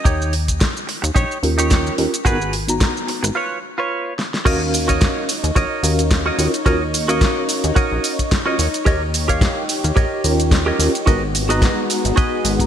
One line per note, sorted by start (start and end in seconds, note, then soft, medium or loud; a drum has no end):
0.05 0.66 D#2 loud
0.05 0.33 D#4 loud
0.05 0.33 G4 loud
0.05 0.34 C#5 loud
0.05 kick loud
0.05 closed hi-hat medium
0.05 shaker medium
0.22 shaker soft
0.33 open hi-hat loud
0.48 kick medium
0.48 closed hi-hat medium
0.48 shaker medium
0.60 muted clean electric guitar stroke soft
0.60 kick loud
0.60 snare loud
0.60 closed hi-hat medium
0.60 shaker medium
0.77 shaker soft
0.87 muted clean electric guitar stroke soft
0.87 open hi-hat medium
1.02 1.11 D#2 loud
1.02 muted clean electric guitar stroke medium
1.02 closed hi-hat medium
1.02 shaker medium
1.15 1.25 A#1 medium
1.15 1.37 D#4 medium
1.15 1.37 G4 medium
1.15 1.38 C#5 medium
1.15 kick loud
1.15 closed hi-hat medium
1.15 shaker medium
1.31 shaker soft
1.43 1.91 D#2 medium
1.43 1.95 C#4 medium
1.43 1.96 F4 medium
1.43 1.96 G4 medium
1.43 1.96 A#4 medium
1.43 open hi-hat loud
1.58 1.92 D#4 medium
1.58 1.92 G4 medium
1.58 1.93 C#5 medium
1.58 closed hi-hat medium
1.58 shaker medium
1.71 kick loud
1.71 snare loud
1.71 closed hi-hat medium
1.71 shaker medium
1.87 shaker soft
1.98 2.08 D#2 medium
1.98 2.10 C#4 medium
1.98 2.10 F4 medium
1.98 2.10 G4 medium
1.98 2.10 A#4 medium
1.98 open hi-hat medium
2.14 closed hi-hat medium
2.14 shaker medium
2.25 2.86 G#1 loud
2.25 2.37 B3 medium
2.25 2.37 D#4 medium
2.25 2.53 F#4 loud
2.25 2.38 F#4 medium
2.25 2.53 G#4 loud
2.25 2.38 A#4 loud
2.25 2.54 B4 loud
2.25 kick loud
2.25 closed hi-hat medium
2.25 shaker medium
2.41 shaker soft
2.53 open hi-hat loud
2.68 3.34 B3 medium
2.68 3.35 D#4 medium
2.68 3.35 F#4 medium
2.68 3.35 A#5 medium
2.68 closed hi-hat medium
2.68 shaker medium
2.80 muted clean electric guitar stroke soft
2.80 kick loud
2.80 snare loud
2.80 closed hi-hat medium
2.80 shaker medium
2.97 shaker soft
3.07 muted clean electric guitar stroke soft
3.07 open hi-hat medium
3.23 3.31 G#1 loud
3.23 muted clean electric guitar stroke medium
3.23 closed hi-hat medium
3.23 shaker medium
3.35 3.57 F4 medium
3.35 3.58 B4 medium
3.35 3.58 C#5 medium
3.78 4.12 F4 medium
3.78 4.13 B4 medium
3.78 4.13 C#5 medium
4.19 snare medium
4.34 snare medium
4.45 5.07 D#2 loud
4.45 5.28 C#4 loud
4.45 11.03 D#4 medium
4.45 4.61 F#4 loud
4.45 5.29 F#4 medium
4.45 4.61 A#4 loud
4.45 5.29 A#4 loud
4.45 11.03 C#5 medium
4.45 4.61 C#5 loud
4.45 4.62 D#5 loud
4.45 5.28 F5 medium
4.45 kick loud
4.45 closed hi-hat medium
4.45 crash loud
4.45 ride medium
4.45 shaker soft
4.73 muted clean electric guitar stroke soft
4.73 open hi-hat loud
4.73 ride medium
4.73 shaker medium
4.88 5.22 F#4 medium
4.88 5.22 A#4 medium
4.88 5.23 C#5 medium
4.88 5.23 D#5 loud
4.88 kick medium
4.88 closed hi-hat medium
4.88 shaker soft
5.01 kick loud
5.01 snare loud
5.01 closed hi-hat medium
5.01 ride medium
5.01 shaker soft
5.29 open hi-hat medium
5.29 ride medium
5.29 shaker medium
5.44 5.51 D#2 loud
5.44 closed hi-hat medium
5.44 shaker soft
5.55 5.65 A#1 medium
5.55 5.91 F#4 medium
5.55 5.91 A#4 medium
5.55 5.92 C#5 medium
5.55 5.92 D#5 medium
5.55 kick loud
5.55 closed hi-hat medium
5.55 ride medium
5.55 shaker soft
5.83 6.31 D#2 medium
5.83 6.36 C#4 medium
5.83 6.36 F#4 medium
5.83 6.36 A#4 medium
5.83 6.36 F5 medium
5.83 open hi-hat loud
5.83 ride medium
5.83 shaker medium
5.99 closed hi-hat medium
5.99 shaker soft
6.11 kick loud
6.11 snare loud
6.11 closed hi-hat medium
6.11 ride medium
6.11 shaker soft
6.26 6.46 F#4 medium
6.26 6.46 A#4 medium
6.26 6.47 C#5 medium
6.26 6.47 D#5 loud
6.38 6.48 D#2 loud
6.38 6.50 C#4 medium
6.38 6.50 F4 medium
6.38 6.50 F#4 medium
6.38 6.50 A#4 medium
6.38 open hi-hat medium
6.38 ride medium
6.38 shaker medium
6.54 closed hi-hat medium
6.54 shaker soft
6.66 7.27 D#2 loud
6.66 6.77 C#4 medium
6.66 6.77 F4 medium
6.66 6.81 F#4 loud
6.66 6.78 F#4 medium
6.66 6.82 A#4 loud
6.66 6.78 A#4 loud
6.66 6.82 C#5 loud
6.66 6.82 D#5 loud
6.66 kick loud
6.66 closed hi-hat medium
6.66 ride medium
6.66 shaker soft
6.93 muted clean electric guitar stroke soft
6.93 open hi-hat loud
6.93 ride medium
6.93 shaker medium
7.08 8.43 C#4 medium
7.08 7.42 F#4 medium
7.08 8.44 F#4 medium
7.08 7.43 A#4 medium
7.08 8.44 A#4 medium
7.08 7.43 C#5 medium
7.08 7.43 D#5 loud
7.08 8.44 F5 medium
7.08 closed hi-hat medium
7.08 shaker soft
7.21 kick loud
7.21 snare loud
7.21 closed hi-hat medium
7.21 ride medium
7.21 shaker soft
7.49 open hi-hat loud
7.49 ride medium
7.49 shaker medium
7.64 7.72 D#2 loud
7.64 closed hi-hat medium
7.64 shaker soft
7.75 8.11 F#4 medium
7.75 8.11 A#4 medium
7.75 8.12 C#5 medium
7.75 8.12 D#5 loud
7.75 kick loud
7.75 closed hi-hat medium
7.75 ride medium
7.75 shaker soft
7.92 7.99 A#1 medium
8.04 open hi-hat loud
8.04 ride medium
8.04 shaker medium
8.19 kick medium
8.19 closed hi-hat medium
8.19 shaker soft
8.32 kick loud
8.32 snare loud
8.32 closed hi-hat medium
8.32 ride medium
8.32 shaker soft
8.46 8.55 C#4 medium
8.46 8.56 F4 medium
8.46 8.66 F#4 medium
8.46 8.56 F#4 medium
8.46 8.66 A#4 medium
8.46 8.67 C#5 medium
8.46 8.56 D#5 medium
8.46 8.67 D#5 loud
8.59 8.68 D#2 medium
8.59 open hi-hat loud
8.59 ride medium
8.59 shaker medium
8.74 closed hi-hat medium
8.74 shaker soft
8.85 9.47 D#2 loud
8.85 9.01 G4 loud
8.85 11.05 G4 medium
8.85 9.02 A#4 loud
8.85 9.02 C#5 loud
8.85 9.02 D#5 loud
8.85 kick loud
8.85 closed hi-hat medium
8.85 ride medium
8.85 shaker soft
9.13 muted clean electric guitar stroke soft
9.13 open hi-hat loud
9.13 ride medium
9.13 shaker medium
9.28 9.62 G4 medium
9.28 9.63 A#4 medium
9.28 9.63 C#5 medium
9.28 9.63 F5 loud
9.28 kick medium
9.28 closed hi-hat medium
9.28 shaker soft
9.41 kick loud
9.41 snare loud
9.41 closed hi-hat soft
9.41 ride medium
9.41 shaker soft
9.69 open hi-hat loud
9.69 ride medium
9.69 shaker medium
9.84 9.92 D#2 loud
9.84 closed hi-hat medium
9.84 shaker soft
9.96 10.06 A#1 loud
9.96 10.31 G4 medium
9.96 10.32 A#4 medium
9.96 10.32 C#5 medium
9.96 10.32 D#5 medium
9.96 kick loud
9.96 closed hi-hat medium
9.96 ride medium
9.96 shaker soft
10.24 10.72 D#2 medium
10.24 10.76 C#4 medium
10.24 10.76 F4 medium
10.24 10.77 G4 medium
10.24 10.77 A#4 medium
10.24 open hi-hat loud
10.24 ride medium
10.24 shaker medium
10.40 closed hi-hat medium
10.40 shaker soft
10.51 kick loud
10.51 snare loud
10.51 closed hi-hat soft
10.51 ride medium
10.51 shaker soft
10.66 10.87 G4 medium
10.66 10.87 A#4 medium
10.66 10.87 C#5 medium
10.66 10.87 D#5 loud
10.79 10.89 D#2 loud
10.79 10.91 C#4 medium
10.79 10.91 F4 medium
10.79 10.91 G4 medium
10.79 10.91 A#4 medium
10.79 open hi-hat loud
10.79 ride medium
10.79 shaker medium
10.95 closed hi-hat medium
10.95 shaker soft
11.06 11.68 G#1 loud
11.06 12.67 G#3 medium
11.06 12.67 B3 medium
11.06 11.18 B3 loud
11.06 11.18 D#4 medium
11.06 11.22 F#4 loud
11.06 12.67 F#4 medium
11.06 11.18 F#4 medium
11.06 11.22 G#4 loud
11.06 11.19 A#4 loud
11.06 11.22 B4 loud
11.06 11.23 D#5 loud
11.06 kick loud
11.06 closed hi-hat medium
11.06 ride medium
11.06 shaker soft
11.34 muted clean electric guitar stroke soft
11.34 open hi-hat loud
11.34 ride medium
11.34 shaker medium
11.49 12.56 B3 medium
11.49 12.57 D#4 medium
11.49 11.83 F#4 medium
11.49 12.57 F#4 medium
11.49 11.83 G#4 medium
11.49 11.84 B4 medium
11.49 11.84 D#5 loud
11.49 12.57 A#5 medium
11.49 closed hi-hat medium
11.49 shaker soft
11.62 kick loud
11.62 snare loud
11.62 closed hi-hat soft
11.62 ride medium
11.62 shaker soft
11.90 open hi-hat loud
11.90 ride medium
11.90 shaker medium
12.05 12.12 G#1 loud
12.05 closed hi-hat medium
12.05 shaker soft
12.16 12.52 F#4 medium
12.16 12.52 G#4 medium
12.16 12.52 B4 medium
12.16 12.53 D#5 medium
12.16 kick loud
12.16 closed hi-hat soft
12.16 ride medium
12.16 shaker soft
12.44 12.67 G#1 loud
12.44 open hi-hat loud
12.44 ride medium
12.44 shaker medium
12.59 12.67 B3 medium
12.59 12.67 D#4 medium
12.59 12.67 F#4 medium
12.59 12.67 A#5 medium
12.59 kick medium
12.59 closed hi-hat medium
12.59 shaker soft